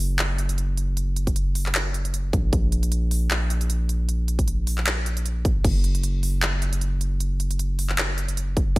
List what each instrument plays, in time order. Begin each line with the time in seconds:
Already playing: 808-style bass F#1
0.19 clap, closed hi-hat
0.38 closed hi-hat
0.49 closed hi-hat
0.58 closed hi-hat
0.77 closed hi-hat
0.97 closed hi-hat
1.16 closed hi-hat
1.27 kick, closed hi-hat
1.36 closed hi-hat
1.55 open hi-hat
1.66 clap
1.75 clap, closed hi-hat
1.94 closed hi-hat
2.05 closed hi-hat
2.14 closed hi-hat
2.33 808-style bass A#1, kick, closed hi-hat
2.53 kick, closed hi-hat
2.72 closed hi-hat
2.83 closed hi-hat
2.92 closed hi-hat
3.11 open hi-hat
3.31 clap, closed hi-hat
3.50 closed hi-hat
3.61 closed hi-hat
3.70 closed hi-hat
3.89 closed hi-hat
4.09 closed hi-hat
4.28 closed hi-hat
4.39 kick, closed hi-hat
4.48 closed hi-hat
4.67 open hi-hat
4.78 clap
4.87 clap, closed hi-hat
5.06 closed hi-hat
5.17 closed hi-hat
5.26 closed hi-hat
5.45 kick, closed hi-hat
5.64 808-style bass F#1, kick, closed hi-hat, crash
5.84 closed hi-hat
5.95 closed hi-hat
6.03 closed hi-hat
6.23 open hi-hat
6.42 clap, closed hi-hat
6.62 closed hi-hat
6.73 closed hi-hat
6.81 closed hi-hat
7.01 closed hi-hat
7.20 closed hi-hat
7.40 closed hi-hat
7.51 closed hi-hat
7.59 closed hi-hat
7.79 open hi-hat
7.90 clap
7.98 clap, closed hi-hat
8.18 closed hi-hat
8.28 closed hi-hat
8.37 closed hi-hat
8.57 kick, closed hi-hat